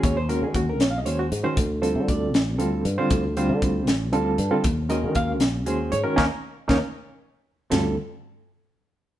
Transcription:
Already playing: reed electric piano D#3 G#3 C#4 F#4 G#4
0.03 fretless electric bass D#2, reed electric piano C#5, kick, closed hi-hat
0.17 reed electric piano C5
0.29 reed electric piano D#3 G#3 C#4 F#4 A#4, closed hi-hat
0.42 fretless electric bass D#3, reed electric piano G#4
0.54 fretless electric bass D#2, reed electric piano F#4, kick, closed hi-hat
0.69 reed electric piano A#4
0.80 fretless electric bass A#1, reed electric piano C#5, snare, closed hi-hat
0.91 reed electric piano F5
0.98 reed electric piano D#5
1.06 fretless electric bass D#2, reed electric piano D#3 G#3 C#4 F#4 C5 C#5, closed hi-hat
1.19 reed electric piano F#4
1.32 fretless electric bass G#2, closed hi-hat
1.44 reed electric piano D#3 G#3 C#4 F#4 C5
1.57 fretless electric bass D2, kick, closed hi-hat
1.82 reed electric piano D3 G3 C4 F4 A4 C5, closed hi-hat
1.95 fretless electric bass D3
2.08 fretless electric bass D2, reed electric piano D5, kick, closed hi-hat
2.34 fretless electric bass A1, snare, closed hi-hat
2.58 fretless electric bass D2, reed electric piano D3 G3 C4 F4 A4, closed hi-hat
2.85 fretless electric bass G2, closed hi-hat
2.98 reed electric piano D3 G3 C4 F4 C5
3.10 fretless electric bass D2, kick, closed hi-hat
3.37 reed electric piano D3 G3 C4 F4 C5, closed hi-hat
3.49 fretless electric bass D3
3.62 fretless electric bass D2, kick, closed hi-hat
3.87 fretless electric bass A1, snare, closed hi-hat
4.12 fretless electric bass D2, reed electric piano D3 G3 C4 F4 A4 A5, closed hi-hat
4.38 fretless electric bass G2, closed hi-hat
4.51 reed electric piano D3 G3 C4 F4 A4
4.64 fretless electric bass D#2, kick, closed hi-hat
4.89 reed electric piano D#3 G#3 C#4 F#4 A#4 D#5, closed hi-hat
5.04 fretless electric bass D#3
5.15 fretless electric bass D#2, reed electric piano F5, kick, closed hi-hat
5.40 fretless electric bass A#1, snare, closed hi-hat
5.66 fretless electric bass D#2, reed electric piano D#3 G#3 C#4 F#4 G#4 C5, closed hi-hat
5.92 fretless electric bass G#2, reed electric piano C#5, closed hi-hat
6.04 reed electric piano D#3 G#3 C#4 F#4 A#4
6.16 fretless electric bass D#2, reed electric piano A#3 C#4 D#4 A#4 C#5 D#5, kick, snare
6.68 fretless electric bass D#2, reed electric piano A#3 C#4 D#4 A#4 C#5 D#5, kick, snare
7.70 fretless electric bass D2, reed electric piano D3 G3 C4 F4 A4, snare, floor tom, ride bell

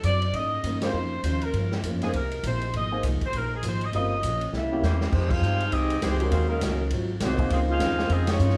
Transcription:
0.03 upright bass F#2, steel-string acoustic guitar D3 F#3 C4, saxophone section D5, kick, hi-hat pedal, ride
0.07 steel-string acoustic guitar E4
0.22 ride
0.33 upright bass G#2, steel-string acoustic guitar C#3 F3 A#3, saxophone section D#5, kick, ride
0.37 steel-string acoustic guitar D#4
0.63 upright bass G2, steel-string acoustic guitar C#3 F3 A#3 D#4, kick, hi-hat pedal, ride
0.82 grand piano G3 C4 F4 A#4, saxophone section C5, snare, ride
0.93 upright bass F2, steel-string acoustic guitar C#3 F3 A#3
0.97 steel-string acoustic guitar D#4
1.23 upright bass D#2, steel-string acoustic guitar C#3 F3 A#3 D#4, kick, hi-hat pedal, ride
1.41 saxophone section A#4, ride
1.53 upright bass G2, steel-string acoustic guitar G2 F3, kick, ride
1.58 steel-string acoustic guitar A#3 C#4
1.72 snare
1.83 upright bass F2, steel-string acoustic guitar G2 F3 A#3, kick, hi-hat pedal, ride
1.87 steel-string acoustic guitar C#4
2.02 grand piano A#3 D#4 G#4 C5, saxophone section G#4, snare, ride
2.13 upright bass C2, steel-string acoustic guitar C3 A#3 E4, saxophone section A#4, kick, ride
2.18 steel-string acoustic guitar G#4
2.31 ride
2.43 upright bass A#1, steel-string acoustic guitar C3 A#3 E4 G#4, saxophone section C5, kick, hi-hat pedal, ride
2.62 ride
2.73 upright bass G#1, steel-string acoustic guitar F3 A#3 D#4, saxophone section D#5, kick, ride
2.78 steel-string acoustic guitar G#4
2.92 grand piano A#3 D#4 G#4 C5
3.03 upright bass C2, steel-string acoustic guitar F3 A#3 D#4 G#4, kick, hi-hat pedal, ride
3.21 muted upright bass stroke, kick, ride
3.25 saxophone section C5
3.33 upright bass A#1, steel-string acoustic guitar F3 A#3 D#4, kick, ride
3.37 steel-string acoustic guitar G#4, saxophone section A#4
3.56 saxophone section G#4
3.63 upright bass G#1, steel-string acoustic guitar F3 A#3 D#4 G#4, kick, hi-hat pedal, ride
3.68 saxophone section C5
3.81 saxophone section D#5, ride
3.93 upright bass G1, steel-string acoustic guitar G2 F3 A#3, grand piano G3 C4 F4 A#4, saxophone section D#5, kick, ride
3.97 steel-string acoustic guitar C#4
4.22 upright bass A#1, steel-string acoustic guitar G2 F3 A#3 C#4, kick, hi-hat pedal, ride
4.41 ride
4.52 upright bass C2, steel-string acoustic guitar C3 E3 A#3 C#4, trombone section G3 A#3 E4, saxophone section E5, snare
4.71 grand piano A#3 C#4 E4 G4
4.82 upright bass E2, steel-string acoustic guitar C3 E3 A#3 C#4, trombone section E3 G3 C4, saxophone section A#3 E4 G4 C5, snare, hi-hat pedal
5.01 snare
5.12 upright bass F2, trombone section D#3 G#3 C4, steel-string acoustic guitar F3 G#3 D#4, saxophone section G#3 D#4 G4 C5, kick, crash
5.16 steel-string acoustic guitar G4
5.29 trombone section G#3 C4 F4, saxophone section D#4 G#4 C5 F5, kick, crash
5.41 upright bass G2, steel-string acoustic guitar F3 G#3 D#4 G4, hi-hat pedal
5.60 ride
5.68 upright bass C2, trombone section G#3 C4 D#4, saxophone section C4 D#5, kick, ride
5.72 steel-string acoustic guitar F3 G#3 D#4 G4, saxophone section G4 G#4
5.90 ride
5.99 upright bass C#2, trombone section D#3 G#3 C4, steel-string acoustic guitar F3 G#3, saxophone section G#3 D#4 G4 C5, kick, snare, hi-hat pedal, ride
6.04 steel-string acoustic guitar D#4 G4
6.20 grand piano G#3 C#4 F#4 A#4, ride
6.30 upright bass D#2, steel-string acoustic guitar D#3 A#3 C#4, saxophone section G#3 C#4 F4 C5, trombone section C4, kick, ride
6.35 steel-string acoustic guitar F#4
6.47 trombone section C#3 F#3 A#3, saxophone section F#3 C#4 D#4 A#4
6.61 upright bass C#2, steel-string acoustic guitar D#3 A#3 C#4 F#4, kick, snare, hi-hat pedal, ride
6.90 upright bass G#1, steel-string acoustic guitar G#2 F#3 C4, kick, ride
6.95 steel-string acoustic guitar F4
7.20 upright bass C2, steel-string acoustic guitar G#2 F#3 C4 F4, trombone section D#3 F#3 C4, saxophone section A#3 D#4 F#4 C5, kick, snare, hi-hat pedal, ride
7.38 grand piano A#3 D#4 G#4 C5, kick, ride
7.50 upright bass C#2, steel-string acoustic guitar C#3 F3 C4 D#4, trombone section F3 G#3 C4, saxophone section G#3 D#4 F4 C5, kick, ride
7.69 trombone section G#3 C4 F4, saxophone section D#4 G#4 C5 F5
7.79 upright bass D#2, steel-string acoustic guitar C#3 F3 C4 D#4, kick, snare, hi-hat pedal, ride
7.98 grand piano A#3 D#4 G#4 C5, snare
8.09 upright bass F2, steel-string acoustic guitar C#3 F3 C4 D#4, trombone section G#3 C4 D#4, saxophone section C4 F4 G#4 D#5, kick, ride
8.27 trombone section F3 G#3 C#4, saxophone section G#3 D#4 F4 C#5, snare, ride
8.39 upright bass G2, steel-string acoustic guitar C#3 F3 C4 D#4, hi-hat pedal
8.49 snare

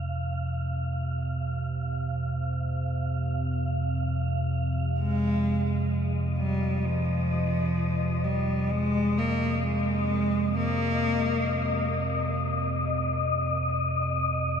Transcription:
Already playing: synth drone F2 C3, synth texture F5
5.00 cello G#3, synth texture D#5
6.38 cello G3
6.85 cello F3
8.24 cello G3
8.71 cello G#3
9.18 cello A#3
9.63 cello G#3
10.57 cello A#3

